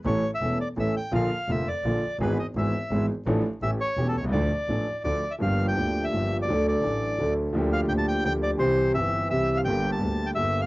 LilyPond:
<<
  \new Staff \with { instrumentName = "Bandoneon" } { \time 3/4 \key d \minor \tempo 4 = 169 cis''8. e''8. d''8 e''8 g''8 | f''4 e''8 d''4. | b'8 ees''8 e''4. r8 | r4 e''8 cis''8. a'16 cis''8 |
d''2 d''8. e''16 | \key g \dorian f''8. g''4 e''4 d''16~ | d''8 d''2 r8 | r8 f''8 g''16 a''16 g''8 g''8 d''8 |
c''4 e''4 e''8. f''16 | g''8. a''4 g''16 e''8. f''16 | }
  \new Staff \with { instrumentName = "Grand piano" } { \clef bass \time 3/4 \key d \minor <a,, a, e a cis' a'>8 r8 <e,, e, e a cis' a'>8 r8 <a,, a, e a cis' a'>8 r8 | <bes,, bes, d f bes f'>8 r8 <f,, f, d f bes f'>8 r8 <bes,, bes, d f bes f'>8 r8 | <gis,, gis, e gis b gis'>8 r8 <gis,, gis, e gis b gis'>8 r8 <gis,, gis, e gis b gis'>8 r8 | <a,, a, f a d' a'>8 r8 <a,, a, e a cis' g'>8 r8 <e,, e, e a cis' g'>8 r32 b,,32 c,32 cis,32 |
<d, d f a d' a'>8 r8 <a,, a, f a d' a'>8 r8 <d, d f a d' a'>8 r8 | \key g \dorian <g,, g, f bes d' g'>4 <d, d f bes d' g'>4 <g,, g, f bes d' g'>4 | <d, d fis a d' a'>4 <a,, a, fis a d' a'>4 <d, d fis a d' a'>4 | <d, d f bes d' g'>4 <d, d f bes d' g'>4 <d, d f bes d' g'>4 |
<c, c e g c' g'>4 <g,, g, e g c' g'>4 <c, c e g c' g'>4 | <g,, g, d g bes g'>4 <d, d g bes g'>4 <g,, g, d g bes g'>4 | }
  \new Staff \with { instrumentName = "Double bass" } { \clef bass \time 3/4 \key d \minor a,,8 r8 e,,8 r8 a,,8 r8 | bes,,8 r8 f,,8 r8 bes,,8 r8 | gis,,8 r8 gis,,8 r8 gis,,8 r8 | a,,8 r8 a,,8 r8 e,,8 c,8 |
d,8 r8 a,,8 r8 d,8 r8 | \key g \dorian g,,4 d,4 g,,4 | d,4 a,,4 d,4 | d,4 d,4 d,4 |
c,4 g,,4 c,4 | g,,4 d,4 g,,4 | }
>>